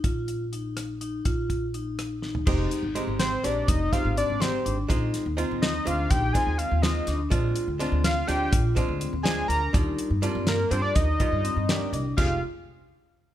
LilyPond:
<<
  \new Staff \with { instrumentName = "Analog synth lead" } { \time 5/8 \key f \dorian \tempo 4 = 124 r2 r8 | r2 r8 | r4. c''8 d''8 | ees''8 f''8 d''8 c''8. r16 |
r4. ees''8 f''8 | g''8 aes''8 f''8 ees''8. r16 | r4. f''8 g''8 | r4. aes''8 bes''8 |
r4. bes'8 c''16 d''16 | ees''2 r8 | f''8 r2 | }
  \new Staff \with { instrumentName = "Vibraphone" } { \time 5/8 \key f \dorian f'4 ees'4 ees'8 | f'4 ees'4 ees'8 | ees'4 c'4 d'8 | ees'4 c'4 d'8 |
ees'4 c'4 d'8 | ees'4 c'4 d'8 | f'4 c'4 d'8 | f'4 c'4 d'8 |
ees'4 c'4 d'8 | ees'4 c'4 d'8 | f'8 r2 | }
  \new Staff \with { instrumentName = "Hollow-body jazz guitar" } { \time 5/8 \key f \dorian << { r2 r8 | r2 r8 | r2 r8 | r2 r8 |
r2 r8 | r2 r8 | r2 r8 | r2 r8 |
r2 r8 | r4. g''8 ees''8 | r2 r8 | } \\ { r2 r8 | r2 r8 | <aes c' ees' g'>8. r16 <aes c' ees' g'>8. r16 <aes c' ees' g'>8~ | <aes c' ees' g'>16 r16 <aes c' ees' g'>8. r16 <aes c' ees' g'>8. r16 |
<aes c' ees' f'>8. r16 <aes c' ees' f'>8. r16 <aes c' ees' f'>8~ | <aes c' ees' f'>16 r16 <aes c' ees' f'>8. r16 <aes c' ees' f'>8. r16 | <aes c' d' f'>8. r16 <aes c' d' f'>8. r16 <aes c' d' f'>8~ | <aes c' d' f'>16 r16 <aes c' d' f'>8. r16 <aes c' d' f'>8. r16 |
<g bes d' f'>8. r16 <g bes d' f'>8. r16 <g bes d' f'>8~ | <g bes d' f'>16 r16 <d g bes f'>8. r16 <g bes d' g'>8. r16 | <aes c' ees' g'>8 r2 | } >> }
  \new Staff \with { instrumentName = "Upright bass" } { \clef bass \time 5/8 \key f \dorian bes,,2~ bes,,8 | bes,,2~ bes,,8 | f,,8 r16 aes,,8 aes,,8. bes,,8 | f,,8 r16 aes,,8 aes,,8. aes,,8 |
bes,,8 r16 ees,8 ees,8. d,8 | bes,,8 r16 ees,8 ees,8. d,8 | bes,,8 r16 d,8 d,8. d,8 | bes,,8 r16 d,8 d,8. d,8 |
ees,8 r16 g,8 g,8. g,8 | ees,8 r16 g,8 g,8. c,8 | f,,8 r2 | }
  \new DrumStaff \with { instrumentName = "Drums" } \drummode { \time 5/8 <hh bd>8 hh8 hh8 <hh ss>8 hh8 | <hh bd>8 <hh bd>8 hh8 <hh ss>8 sn16 tomfh16 | <cymc bd>8 hh8 hh8 <hh sn>8 <hh sn>8 | <hh bd>8 <hh bd sn>8 hh8 <hh sn>8 hh8 |
<hh bd>8 <hh sn>8 hh8 <hh sn>8 hh8 | <hh bd>8 <hh bd sn>8 hh8 <hh sn>8 <hh sn>8 | <hh bd>8 hh8 <hh sn>8 <hh sn>8 <hh sn>8 | <hh bd>8 <hh bd>8 hh8 <hh sn>8 hh8 |
<hh bd>8 hh8 hh8 <hh sn>8 hh8 | <hh bd>8 <hh bd>8 hh8 <hh sn>8 hh8 | <cymc bd>4. r4 | }
>>